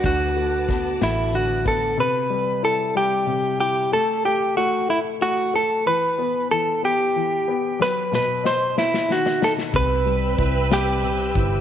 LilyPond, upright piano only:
\new Staff \with { instrumentName = "Upright piano" } { \time 6/8 \key c \lydian \tempo 4. = 62 d8 a8 b8 a8 d8 b8 | c8 g8 e'8 g8 c8 e'8 | a8 a8 a8 a8 a8 a8 | e8 b8 e8 b8 e8 b8 |
fis8 b,8 dis''8 b8 dis8 dis'8 | c8 g8 e'8 g8 c8 e'8 | }